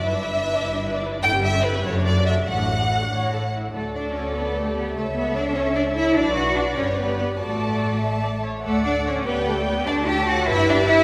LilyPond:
<<
  \new Staff \with { instrumentName = "Violin section" } { \time 6/8 \key d \major \tempo 4. = 98 e''2~ e''8 r8 | g''8 e''8 b'8 cis''8 d''8 e''8 | fis''2~ fis''8 r8 | a'8 d''8 cis''8 b'8 a'8 b'8 |
a'8 b'8 d''8 cis''8 d''8 e''8 | d''8 fis''8 d''8 cis''8 b'8 b'8 | a'2~ a'8 r8 | a'8 d''8 cis''8 b'8 a'8 b'8 |
d''8 g''8 fis''8 e''8 d''8 e''8 | }
  \new Staff \with { instrumentName = "Violin section" } { \time 6/8 \key d \major << { e''2~ e''8 r8 | g''8 e''8 b'8 cis''8 d''8 e''8 | fis''2~ fis''8 r8 | d''2. |
e''2. | d''4. d''4. | a''4. a''4 r8 | fis''4. g''4. |
a''4. e''4. | } \\ { r2. | r2. | r2. | a'2. |
cis''2. | d''4. d''4. | d''4. e''4 r8 | d''4. d''4. |
d''8. cis''8. b'4. | } >> }
  \new Staff \with { instrumentName = "Viola section" } { \time 6/8 \key d \major << { b'16 d''16 b'16 d''16 b'16 d''16 b'16 d''16 b'16 d''16 b'16 d''16 | a'16 g'16 a'16 g'16 a'16 g'16 a'16 fis'16 a'16 fis'16 a'16 fis'16 | a'16 fis'16 a'16 fis'16 a'16 fis'16 cis''8 a'8 e'8 | a'2. |
a'2. | b'4. b'4. | d''4. a'8 d''8 cis''8 | d''4. b'4. |
a'4. b'4. | } \\ { e'16 d'16 e'16 d'16 e'16 d'16 e'16 d'16 e'16 d'16 e'16 d'16 | e'16 cis'16 e'16 cis'16 e'16 cis'16 fis'16 d'16 fis'16 d'16 fis'16 d'16 | fis'16 d'16 fis'16 d'16 fis'16 d'16 r4. | fis'2 g'4 |
a'2. | fis'4. g'4. | fis'4. r4. | a'4. g'4. |
fis'4. g'4. | } >> }
  \new Staff \with { instrumentName = "Cello section" } { \time 6/8 \key d \major g,4. g,4. | g,4. fis,4. | a,4. a,4. | a8 d'8 cis'8 b8 a8 b8 |
a8 b8 d'8 cis'8 d'8 e'8 | d'8 fis'8 d'8 cis'8 b8 b8 | a2~ a8 r8 | a8 d'8 cis'8 b8 a8 b8 |
d'8 g'8 fis'8 e'8 d'8 e'8 | }
  \new Staff \with { instrumentName = "Double bass section" } { \clef bass \time 6/8 \key d \major g,,4. g,,4. | g,,4. fis,,4. | a,,4. a,,4. | d,2. |
cis,2. | b,,4. g,,4. | a,,2~ a,,8 r8 | d,4. d,4. |
d,4. g,,4. | }
>>